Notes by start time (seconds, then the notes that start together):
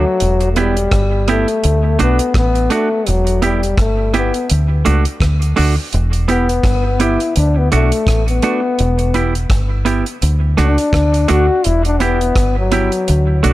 Already playing: F#3
0.07 muted clean electric guitar stroke
0.20 E1, closed hi-hat
0.41 closed hi-hat
0.52 A3
0.56 G3 B3 E4 G4, closed hi-hat
0.77 closed hi-hat
0.91 G1, kick, cross-stick, closed hi-hat
1.28 A3 B3 E4 G4, closed hi-hat
1.48 closed hi-hat
1.64 D2, closed hi-hat
1.99 B1 A3 B3 D4 F#4, closed hi-hat
2.19 closed hi-hat
2.34 A1 B3, kick, cross-stick, closed hi-hat
2.55 closed hi-hat
2.70 A3 D4 F#4, closed hi-hat
2.91 muted clean electric guitar stroke
3.06 E1 F#3, closed hi-hat
3.27 closed hi-hat
3.42 G3 B3 E4 G4, closed hi-hat
3.63 closed hi-hat
3.77 G1 A3, kick, cross-stick, closed hi-hat
4.14 B3 E4 G4, closed hi-hat
4.34 closed hi-hat
4.50 D2, closed hi-hat
4.85 C#2 A3 D4 F#4, closed hi-hat
5.05 closed hi-hat
5.20 D2, kick, cross-stick, closed hi-hat
5.42 closed hi-hat
5.56 D2 A3 D4 F#4, open hi-hat
5.93 E1, closed hi-hat
6.13 closed hi-hat
6.28 B3 E4 G4, closed hi-hat
6.49 closed hi-hat
6.63 G1, kick, cross-stick, closed hi-hat
7.00 B3 E4 G4, closed hi-hat
7.20 closed hi-hat
7.36 D2 D4, closed hi-hat
7.58 B3
7.72 B1 A3 D4 F#4, closed hi-hat
7.92 closed hi-hat
8.07 A1, kick, cross-stick, closed hi-hat
8.28 B3, closed hi-hat
8.42 A3 D4 F#4, closed hi-hat
8.62 muted clean electric guitar stroke
8.79 E1, closed hi-hat
8.99 closed hi-hat
9.14 B3 E4 G4, closed hi-hat
9.35 closed hi-hat
9.50 G1, kick, cross-stick, closed hi-hat
9.85 B3 E4 G4, closed hi-hat
10.06 closed hi-hat
10.22 D2, closed hi-hat
10.57 C#2 A3 D4 F#4, cross-stick, closed hi-hat
10.78 closed hi-hat
10.93 D2, kick, cross-stick, closed hi-hat
11.14 closed hi-hat
11.28 D2 A3 D4 F#4, closed hi-hat
11.48 muted clean electric guitar stroke
11.64 E1 E4, closed hi-hat
11.85 D4, closed hi-hat
12.00 B3 E4 G4, closed hi-hat
12.21 closed hi-hat
12.36 G1, kick, cross-stick, closed hi-hat
12.58 F#3
12.72 B3 E4 G4, closed hi-hat
12.92 closed hi-hat
13.08 D2, closed hi-hat
13.43 B1 A3 D4 F#4, closed hi-hat